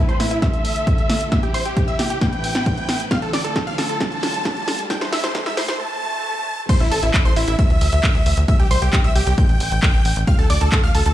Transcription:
Already playing: string section A2 A3 C4 B4, riser
0.09 supersaw synth C5, synth pluck C6, closed hi-hat
0.20 supersaw synth E4, synth pluck E5, snare, open hi-hat
0.31 supersaw synth E4, synth pluck E5, closed hi-hat
0.42 string section D2 D3 F4 A4, supersaw synth E5, synth pluck E6, kick, snare, closed hi-hat
0.54 closed hi-hat
0.65 open hi-hat
0.76 closed hi-hat
0.87 kick, closed hi-hat
0.98 closed hi-hat
1.10 snare, open hi-hat
1.21 closed hi-hat
1.32 string section C2 C3 E4 G4, supersaw synth E5, synth pluck E6, kick, snare, closed hi-hat
1.43 supersaw synth G4, synth pluck G5, closed hi-hat
1.54 supersaw synth C5, synth pluck C6, open hi-hat
1.65 supersaw synth G4, synth pluck G5, closed hi-hat
1.76 supersaw synth G4, synth pluck G5, kick, closed hi-hat
1.88 supersaw synth E5, synth pluck E6, closed hi-hat
1.99 supersaw synth G4, synth pluck G5, snare, open hi-hat
2.10 supersaw synth G4, synth pluck G5, closed hi-hat
2.21 string section A2 E3 C4 B4, supersaw synth G5, synth pluck G6, kick, snare, closed hi-hat
2.33 closed hi-hat
2.44 open hi-hat
2.55 snare, closed hi-hat
2.66 kick, closed hi-hat
2.77 closed hi-hat
2.89 snare, open hi-hat
3.00 closed hi-hat
3.11 string section D2 D3 F4 A4, supersaw synth F5, synth pluck F6, kick, snare, closed hi-hat
3.22 supersaw synth A4, synth pluck A5, closed hi-hat
3.33 supersaw synth D5, synth pluck D6, snare, open hi-hat
3.44 supersaw synth A4, synth pluck A5, closed hi-hat
3.56 supersaw synth A4, synth pluck A5, kick, snare, closed hi-hat
3.67 supersaw synth F5, synth pluck F6, closed hi-hat
3.78 supersaw synth A4, synth pluck A5, snare, open hi-hat
3.89 supersaw synth A4, synth pluck A5, closed hi-hat
4.00 supersaw synth A5, synth pluck A6, kick, snare, closed hi-hat
4.12 closed hi-hat
4.23 snare, open hi-hat
4.34 closed hi-hat
4.45 kick, snare, closed hi-hat
4.57 closed hi-hat
4.68 snare, open hi-hat
4.79 closed hi-hat
4.90 string section C2 C3 E4 G4, supersaw synth G5, synth pluck G6, kick, snare, closed hi-hat
5.01 supersaw synth C5, synth pluck C6, snare, closed hi-hat
5.12 supersaw synth E5, synth pluck E6, snare, open hi-hat
5.24 supersaw synth C5, synth pluck C6, snare, closed hi-hat
5.35 supersaw synth C5, synth pluck C6, kick, snare, closed hi-hat
5.46 supersaw synth E5, synth pluck E6, snare, closed hi-hat
5.57 supersaw synth C5, synth pluck C6, snare, open hi-hat
5.68 supersaw synth C5, synth pluck C6, snare, closed hi-hat
5.80 supersaw synth A5, swell
6.69 supersaw synth C5, synth pluck C6, kick, closed hi-hat, crash
6.80 analog synth bass A1, supersaw synth E4, synth pluck E5, closed hi-hat
6.91 analog synth bass A1, supersaw synth A4, synth pluck A5, open hi-hat
7.03 analog synth bass A1, supersaw synth E4, synth pluck E5, closed hi-hat
7.14 supersaw synth E4, synth pluck E5, kick, clap, closed hi-hat
7.25 analog synth bass A1, supersaw synth C5, synth pluck C6, closed hi-hat
7.36 analog synth bass A1, supersaw synth E4, synth pluck E5, open hi-hat
7.48 analog synth bass A1, supersaw synth E4, synth pluck E5, closed hi-hat
7.59 supersaw synth E5, synth pluck E6, kick, closed hi-hat
7.70 analog synth bass D2, closed hi-hat
7.81 analog synth bass D2, open hi-hat
7.92 analog synth bass D2, closed hi-hat
8.04 kick, clap, closed hi-hat
8.15 analog synth bass D2, closed hi-hat
8.26 analog synth bass D2, open hi-hat
8.37 analog synth bass D2, closed hi-hat
8.48 supersaw synth E5, synth pluck E6, kick, closed hi-hat
8.59 analog synth bass C2, supersaw synth G4, synth pluck G5, closed hi-hat
8.71 analog synth bass C2, supersaw synth C5, synth pluck C6, open hi-hat
8.82 analog synth bass C2, supersaw synth G4, synth pluck G5, closed hi-hat
8.93 supersaw synth G4, synth pluck G5, kick, clap, closed hi-hat
9.04 analog synth bass C2, supersaw synth E5, synth pluck E6, closed hi-hat
9.15 analog synth bass C2, supersaw synth G4, synth pluck G5, open hi-hat
9.27 analog synth bass C2, supersaw synth G4, synth pluck G5, closed hi-hat
9.38 supersaw synth G5, synth pluck G6, kick, closed hi-hat
9.49 analog synth bass A1, closed hi-hat
9.60 analog synth bass A1, open hi-hat
9.71 analog synth bass A1, closed hi-hat
9.83 kick, clap, closed hi-hat
9.94 analog synth bass A1, closed hi-hat
10.05 analog synth bass A1, open hi-hat
10.16 analog synth bass A1, closed hi-hat
10.27 supersaw synth F5, synth pluck F6, kick, closed hi-hat
10.39 analog synth bass D2, supersaw synth A4, synth pluck A5, closed hi-hat
10.50 analog synth bass D2, supersaw synth D5, synth pluck D6, open hi-hat
10.61 analog synth bass D2, supersaw synth A4, synth pluck A5, closed hi-hat
10.72 supersaw synth A4, synth pluck A5, kick, clap, closed hi-hat
10.83 analog synth bass D2, supersaw synth F5, synth pluck F6, closed hi-hat
10.95 analog synth bass D2, supersaw synth A4, synth pluck A5, open hi-hat
11.06 analog synth bass D2, supersaw synth A4, synth pluck A5, closed hi-hat

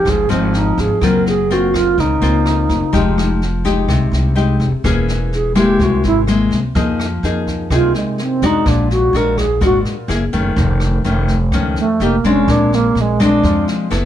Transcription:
Already playing: nylon-string guitar F3 C4 D#4, alto flute G4
0.05 upright bass G#1, nylon-string guitar G#2, kick, cross-stick, snare
0.10 alto flute G#4
0.29 upright bass G#1, nylon-string guitar F3 C4 D#4, alto flute C4, snare
0.53 alto flute D#4, snare
0.78 upright bass G#1, alto flute G#4, kick, snare
1.01 upright bass F#1, nylon-string guitar F#3 A#3 C4 F4, alto flute A#4, kick, cross-stick, snare
1.26 alto flute G#4, snare
1.50 nylon-string guitar A#3 C4 F4, alto flute F#4, snare
1.74 alto flute F4, kick, cross-stick, snare
1.98 upright bass C#2, nylon-string guitar C#3, alto flute D#4, kick, snare
2.21 upright bass C#2, nylon-string guitar A#3 C4 F4, snare
2.45 cross-stick, snare
2.69 upright bass F#1, kick, snare
2.93 upright bass F1, nylon-string guitar F3 G#3 D#4 G4, kick, snare
3.18 cross-stick, snare
3.42 snare
3.65 nylon-string guitar G#3 D#4 G4, kick, snare
3.88 upright bass C2, nylon-string guitar C3, kick, cross-stick, snare
4.12 upright bass C2, snare
4.35 nylon-string guitar G#3 D#4 G4, snare
4.60 upright bass F1, kick, snare
4.84 upright bass E1, nylon-string guitar E3 A#3 C#4 G#4, kick, cross-stick, snare
5.08 snare
5.32 alto flute G#4, snare
5.55 nylon-string guitar G#3 A#3 E4, alto flute G4, kick, cross-stick, snare
5.80 upright bass C2, nylon-string guitar C3, alto flute F#4, kick, snare
6.03 upright bass G#1, alto flute E4, snare
6.27 nylon-string guitar G#3 A#3 E4, cross-stick, snare
6.51 upright bass C2, kick, snare
6.75 upright bass F2, nylon-string guitar F3 A#3 D#4 G#4, kick, snare
6.99 cross-stick, snare
7.23 upright bass F2, nylon-string guitar A#3 D#4 G#4, snare
7.47 kick, snare
7.70 upright bass C2, nylon-string guitar C3 A#3 D#4 G#4, alto flute F4, kick, cross-stick, snare
7.94 alto flute G#3, snare
8.18 snare
8.23 alto flute C4
8.42 upright bass F2, nylon-string guitar G#3 D4 F#4, alto flute D#4, kick, snare
8.66 upright bass A#1, nylon-string guitar A#2, alto flute D4, kick, cross-stick, snare
8.91 alto flute F#4, snare
9.13 upright bass A#1, nylon-string guitar G#3 D4 F#4, alto flute A#4, snare
9.38 alto flute G#4, kick, cross-stick, snare
9.61 upright bass G#1, nylon-string guitar A#2 G#3 D4 F#4, kick, snare
9.65 alto flute F#4
9.85 snare
10.08 upright bass F#1, nylon-string guitar A#3 E4 G#4, cross-stick, snare
10.33 upright bass F#1, nylon-string guitar D#3 A3 C#4, kick, snare
10.56 upright bass F1, nylon-string guitar F2, kick, snare
10.80 cross-stick, snare
11.04 upright bass F1, nylon-string guitar D#3 A3 C#4, snare
11.28 kick, snare
11.52 upright bass C#2, nylon-string guitar F2 D#3 A3 C#4, kick, cross-stick, snare
11.76 alto flute A3, snare
12.00 upright bass F1, nylon-string guitar A3 D#4 G4, alto flute A#3, snare
12.24 upright bass F1, nylon-string guitar G#3 C4 D4, alto flute C#4, kick, snare
12.48 upright bass A#1, nylon-string guitar A#2, alto flute D4, kick, cross-stick, snare
12.72 alto flute A#3, snare
12.95 upright bass A#1, snare
13.01 alto flute G#3
13.20 nylon-string guitar G#3 C4 D4, alto flute D4, kick, cross-stick, snare
13.43 upright bass F2, nylon-string guitar F3, kick, snare
13.67 snare
13.90 upright bass F#1, nylon-string guitar B3 E4 A4, cross-stick, snare

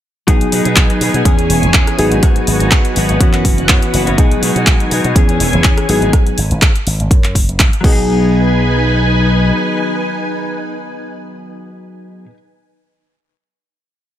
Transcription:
0.27 slap bass B1, clean electric guitar F#3 B3 D#4 G#4, reed electric piano F#3 B3 D#4 G#4, string machine D#4 B4 G#5, kick, closed hi-hat
0.41 closed hi-hat
0.51 slap bass B2, clean electric guitar F#3 B3 D#4 G#4, open hi-hat
0.64 slap bass B2, clean electric guitar B3 D#4 G#4, closed hi-hat
0.76 slap bass B1, clean electric guitar F#3 B3 D#4 G#4, kick, clap, closed hi-hat
0.90 closed hi-hat
1.00 slap bass B2, clean electric guitar F#3 B3 D#4 G#4, open hi-hat
1.13 slap bass B2, clean electric guitar B3 D#4 G#4, closed hi-hat
1.24 slap bass E2, reed electric piano E3 B3 C#4 G#4, clean electric guitar B3 C#4 G#4, string machine E4 C#5, kick, closed hi-hat
1.38 clean electric guitar C#4 G#4, closed hi-hat
1.50 slap bass E1, open hi-hat
1.63 slap bass E1, closed hi-hat
1.74 clean electric guitar B3 C#4 G#4, kick, clap, closed hi-hat
1.87 cross-stick, closed hi-hat
1.97 slap bass G#1, clean electric guitar F#3 B3 D#4 F#4, reed electric piano F#3 B3 D#4 G#4, string machine F#4 B4, open hi-hat
2.11 slap bass G#1, clean electric guitar B3 D#4 F#4, closed hi-hat
2.22 clean electric guitar F#3 B3 D#4 F#4, kick, cross-stick, closed hi-hat
2.36 closed hi-hat
2.47 slap bass G#1, open hi-hat
2.60 slap bass G#1, clean electric guitar B3 D#4 F#4, closed hi-hat
2.71 slap bass G#2, clean electric guitar F#3 B3 D#4 F#4, kick, cross-stick, clap, closed hi-hat
2.85 closed hi-hat
2.95 slap bass G#1, clean electric guitar F#3 B3 D#4 F#4, open hi-hat
3.08 slap bass G#1, clean electric guitar B3 D#4 F#4, closed hi-hat
3.20 clean electric guitar E3 B3 C#4 F#4, reed electric piano E3 B3 C#4 F#4, string machine E4 F#5, kick, closed hi-hat
3.33 clean electric guitar B3 C#4 F#4, clap, closed hi-hat
3.45 slap bass F#1, kick, open hi-hat
3.58 slap bass F#1, closed hi-hat
3.69 slap bass F#2, clean electric guitar E3 B3 C#4 F#4, kick, clap, closed hi-hat
3.82 closed hi-hat
3.93 slap bass F#1, clean electric guitar E3 B3 C#4 F#4, open hi-hat
4.06 slap bass F#1, clean electric guitar B3 C#4 F#4, closed hi-hat
4.17 clean electric guitar D#3 G#3 D#4 F#4, reed electric piano F#3 B3 D#4 G#4, string machine D#4 G#5, kick, closed hi-hat
4.31 closed hi-hat
4.42 slap bass B2, clean electric guitar D#3 G#3 D#4 F#4, open hi-hat
4.55 slap bass B2, clean electric guitar G#3 D#4 F#4, closed hi-hat
4.66 slap bass B1, clean electric guitar D#3 G#3 D#4 F#4, kick, clap, closed hi-hat
4.80 closed hi-hat
4.91 slap bass B2, clean electric guitar D#3 G#3 D#4 F#4, open hi-hat
5.04 slap bass B2, clean electric guitar G#3 D#4 F#4, closed hi-hat
5.15 slap bass E2, clean electric guitar E3 B3 C#4 G#4, reed electric piano E3 B3 C#4 G#4, string machine E4 C#5 G#5, kick, closed hi-hat
5.28 clean electric guitar B3 C#4 G#4, closed hi-hat
5.40 slap bass E1, open hi-hat
5.53 slap bass E1, closed hi-hat
5.64 clean electric guitar E3 B3 C#4 G#4, kick, clap, closed hi-hat
5.78 cross-stick, closed hi-hat
5.88 slap bass G#1, clean electric guitar F#3 B3 D#4 G#4, reed electric piano F#3 B3 D#4 G#4, string machine F#4 B4 G#5, open hi-hat
6.01 slap bass G#1, clean electric guitar B3 D#4 G#4, closed hi-hat
6.13 slap bass G#2, kick, cross-stick, closed hi-hat
6.27 closed hi-hat
6.38 slap bass G#1, open hi-hat
6.51 slap bass G#1, closed hi-hat
6.62 slap bass G#2, kick, cross-stick, clap, closed hi-hat
6.76 closed hi-hat
6.87 slap bass G#1, open hi-hat
7.00 slap bass G#1, closed hi-hat
7.11 slap bass F#2, kick, closed hi-hat
7.24 clap, closed hi-hat
7.35 slap bass F#1, kick, open hi-hat
7.49 slap bass F#1, closed hi-hat
7.60 slap bass F#2, kick, clap, closed hi-hat
7.73 closed hi-hat
7.81 slap bass B1, clean electric guitar F#3, reed electric piano F#3 B3 D#4, string machine D#4 B4 G#5, kick, crash
7.85 clean electric guitar B3 D#4, reed electric piano G#4
7.92 clean electric guitar G#4

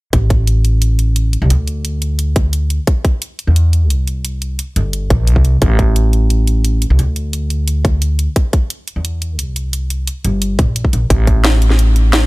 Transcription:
0.13 upright bass A1, kick, closed hi-hat
0.30 kick, closed hi-hat
0.47 closed hi-hat
0.65 closed hi-hat
0.82 closed hi-hat
0.99 closed hi-hat
1.16 closed hi-hat
1.33 closed hi-hat
1.42 upright bass C2
1.50 upright bass D2, closed hi-hat
1.68 closed hi-hat
1.85 closed hi-hat
2.02 closed hi-hat
2.19 closed hi-hat
2.36 kick, closed hi-hat
2.53 closed hi-hat
2.70 closed hi-hat
2.87 kick, closed hi-hat
3.05 kick, closed hi-hat
3.22 closed hi-hat
3.39 closed hi-hat
3.47 upright bass E2
3.56 closed hi-hat
3.73 closed hi-hat
3.90 upright bass C2, closed hi-hat
4.08 closed hi-hat
4.25 closed hi-hat
4.42 closed hi-hat
4.59 closed hi-hat
4.76 upright bass G1, closed hi-hat
4.93 closed hi-hat
5.10 upright bass A#1, kick, closed hi-hat
5.27 closed hi-hat
5.36 upright bass C2, kick
5.45 closed hi-hat
5.62 upright bass A1, kick, closed hi-hat
5.79 kick, closed hi-hat
5.96 closed hi-hat
6.13 closed hi-hat
6.30 closed hi-hat
6.47 closed hi-hat
6.65 closed hi-hat
6.82 closed hi-hat
6.90 upright bass C2
6.99 upright bass D2, closed hi-hat
7.16 closed hi-hat
7.33 closed hi-hat
7.50 closed hi-hat
7.68 closed hi-hat
7.85 kick, closed hi-hat
8.02 closed hi-hat
8.19 closed hi-hat
8.36 kick, closed hi-hat
8.53 kick, closed hi-hat
8.70 closed hi-hat
8.88 closed hi-hat
8.96 upright bass E2
9.05 closed hi-hat
9.22 closed hi-hat
9.39 upright bass C2, closed hi-hat
9.56 closed hi-hat
9.73 closed hi-hat
9.90 closed hi-hat
10.07 closed hi-hat
10.25 upright bass G1, closed hi-hat
10.42 closed hi-hat
10.59 upright bass A#1, kick, closed hi-hat
10.76 closed hi-hat
10.85 kick
10.93 upright bass A#1, closed hi-hat
11.10 upright bass A1, kick, closed hi-hat
11.27 kick, closed hi-hat
11.45 snare, closed hi-hat
11.62 closed hi-hat
11.70 snare
11.79 closed hi-hat
11.96 closed hi-hat
12.13 snare, closed hi-hat

